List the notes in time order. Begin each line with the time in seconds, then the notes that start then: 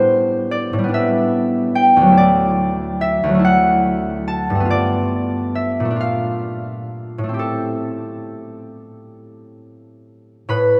Already playing: A2 G3 A3 B3 C4 D4 C5 D5
0.51 D5
0.73 A2
0.78 G3
0.84 B3
0.89 D4
0.94 E5
1.75 G5
1.96 D2
2.02 F#3
2.07 A3
2.12 E4
2.17 D5
3.01 E5
3.23 D2
3.29 F#3
3.34 A3
3.39 E4
3.44 F#5
4.28 A5
4.50 G2
4.55 A3
4.60 B3
4.65 F4
4.70 D5
5.55 E5
5.80 A#2
5.85 A3
5.90 D4
5.96 F4
6.00 F5
7.18 A2
7.24 A3
7.29 C4
7.34 G4
7.39 A4
10.49 A2 B4 B5